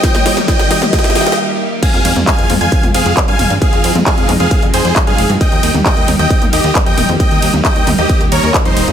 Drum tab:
CC |--------------------------------|x-------------------------------|--------------------------------|--------------------------------|
RD |--------------------------------|----x-------x-------x-------x---|----x-------x-------x-------x---|----x-------x-------x-------x---|
HH |x-x-o-x-x-x-o-x-x-x-o-x---------|x-x-o-x-x-x-o-x-x-x-o-x-x-x-o-x-|x-x-o-x-x-x-o-x-x-x-o-x-x-x-o-x-|x-x-o-x-x-x-o-x-x-x-o-x-x-x-o-x-|
CP |--------------------------------|--------x---------------x-------|--------x---x-----------x-------|--------x---------------x-------|
SD |o-o-o-o-o-o-o-o-oooooooo--------|--------------------------------|--------------------------------|--------------------------------|
T2 |--o---o-------o-----------------|------o-----o-----o---------o---|------o-----o-------------------|------o-----o-----o---------o---|
BD |o-------o-------o---------------|o-------o-------o-------o-------|o-------o-------o-------o-------|o-------o-------o-------o-------|

CC |--------------------------------|
RD |----x-------x-------x-------x---|
HH |x-x-o-x-x-x-o-x-x-x-o-x-x-x-o-x-|
CP |--------x---x-----------x-------|
SD |--------------------------------|
T2 |------o-----o-------------------|
BD |o-------o-------o-------o-------|